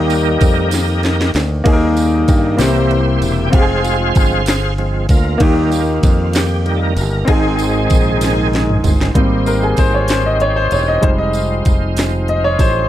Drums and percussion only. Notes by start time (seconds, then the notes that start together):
0.10 ride, tambourine
0.41 kick, ride, tambourine
0.71 snare, ride, tambourine
1.03 snare, ride
1.21 snare
1.34 snare, ride, tambourine
1.66 kick, ride
1.97 ride, tambourine
2.28 kick, ride, tambourine
2.59 snare, ride, tambourine
2.91 ride
3.22 ride, tambourine
3.53 kick, ride
3.84 ride, tambourine
4.15 kick, ride, tambourine
4.46 snare, ride, tambourine
4.78 ride
5.09 kick, ride, tambourine
5.40 kick, ride
5.72 ride, tambourine
6.03 kick, ride, tambourine
6.33 snare, ride, tambourine
6.66 ride
6.97 ride, tambourine
7.28 kick, ride
7.59 ride, tambourine
7.90 kick, ride, tambourine
8.21 snare, ride, tambourine
8.53 snare, ride
8.69 mid tom
8.84 floor tom, ride, tambourine
9.01 snare
9.15 kick, closed hi-hat
9.46 closed hi-hat, tambourine
9.77 kick, closed hi-hat, tambourine
10.08 snare, closed hi-hat, tambourine
10.40 closed hi-hat
10.71 closed hi-hat, tambourine
11.03 kick, closed hi-hat
11.33 closed hi-hat, tambourine
11.65 kick, closed hi-hat, tambourine
11.97 snare, closed hi-hat, tambourine
12.28 closed hi-hat
12.59 kick, closed hi-hat, tambourine